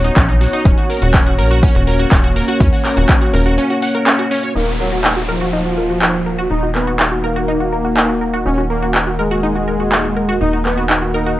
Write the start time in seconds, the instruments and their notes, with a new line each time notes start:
Already playing: analog synth bass D#1, analog synth pad B3 D#4 F#4 C#5
0.04 synth pluck D#4, closed hi-hat
0.16 analog synth bass A#1, synth pluck C#4, kick, clap, closed hi-hat
0.29 synth pluck D#4, closed hi-hat
0.41 synth pluck F#4, open hi-hat
0.53 synth pluck D#4, closed hi-hat
0.65 analog synth bass D#1, analog synth pad A#3 C#4, synth pluck C#4, kick, closed hi-hat
0.78 synth pluck F#4, closed hi-hat
0.90 synth pluck A#4, open hi-hat
1.02 analog synth bass D#1, synth pluck F#4, closed hi-hat
1.14 synth pluck C#4, kick, clap, closed hi-hat
1.26 synth pluck F#4, closed hi-hat
1.38 analog synth bass A#1, synth pluck A#4, open hi-hat
1.51 synth pluck F#4, closed hi-hat
1.63 synth pluck C#4, kick, closed hi-hat
1.75 analog synth bass D#1, synth pluck F#4, closed hi-hat
1.87 synth pluck A#4, open hi-hat
1.99 synth pluck F#4, closed hi-hat
2.11 analog synth bass D#1, synth pluck C#4, kick, clap, closed hi-hat
2.24 synth pluck F#4, closed hi-hat
2.36 synth pluck A#4, open hi-hat
2.48 synth pluck F#4, closed hi-hat
2.60 analog synth bass D#2, synth pluck C#4, kick, closed hi-hat
2.73 synth pluck F#4, open hi-hat
2.85 synth pluck A#4, clap, open hi-hat
2.97 analog synth bass D#1, synth pluck F#4, closed hi-hat
3.09 synth pluck C#4, kick, clap, closed hi-hat
3.21 synth pluck F#4, closed hi-hat
3.33 analog synth bass D#1, synth pluck A#4, open hi-hat
3.46 synth pluck F#4, closed hi-hat
3.58 synth pluck C#4, closed hi-hat
3.70 synth pluck F#4, closed hi-hat
3.82 synth pluck F#5, open hi-hat
3.95 synth pluck A#4, closed hi-hat
4.07 synth pluck C#4, clap, closed hi-hat
4.19 synth pluck F#4, closed hi-hat
4.31 synth pluck C#4, open hi-hat
4.43 synth pluck C#5, closed hi-hat
4.55 analog synth bass D#1, synth drone D#3 A#3, supersaw synth A#3, analog synth pad A#3 D#4 D#5 F#5, synth pluck D#4, downlifter
4.68 synth pluck F#4
4.80 supersaw synth F#3, synth pluck A#4
4.92 synth pluck F#4
5.04 synth pluck D#4, clap
5.17 synth pluck F#4
5.29 supersaw synth F3, synth pluck A#4
5.41 synth pluck F#4
5.53 synth pluck D#4
5.65 synth pluck F#4
5.78 synth pluck A#4
5.90 synth pluck F#4
6.02 synth pluck D#4, clap
6.14 synth pluck F#4
6.26 synth pluck A#4
6.38 synth pluck F#4
6.50 analog synth bass D#1, synth pluck D#4, supersaw synth D#4
6.63 synth pluck F#4
6.75 supersaw synth B3, synth pluck A#4, clap
6.87 synth pluck F#4
6.99 synth pluck D#4, clap
7.12 synth pluck F#4
7.24 supersaw synth A#3, synth pluck A#4
7.36 synth pluck F#4
7.48 synth pluck D#4
7.60 synth pluck F#4
7.72 synth pluck A#4
7.85 synth pluck F#4
7.97 synth pluck D#4, clap
8.09 synth pluck F#4
8.21 synth pluck A#4
8.34 synth pluck F#4
8.46 analog synth bass D#1, supersaw synth C#4, synth pluck D#4
8.58 synth pluck F#4
8.70 supersaw synth A#3, synth pluck A#4
8.82 synth pluck F#4
8.95 synth pluck D#4, clap
9.07 synth pluck F#4
9.19 supersaw synth G#3, synth pluck A#4
9.31 synth pluck F#4
9.43 synth pluck D#4
9.56 synth pluck F#4
9.68 synth pluck A#4
9.80 synth pluck F#4
9.92 synth pluck D#4, clap
10.04 synth pluck F#4
10.17 synth pluck A#4
10.29 synth pluck F#4
10.41 analog synth bass D#1, supersaw synth D#4, synth pluck D#4
10.53 synth pluck F#4
10.65 supersaw synth B3, synth pluck A#4, clap
10.77 synth pluck F#4
10.90 synth pluck D#4, clap
11.02 synth pluck F#4
11.14 supersaw synth D#4, synth pluck A#4
11.26 synth pluck F#4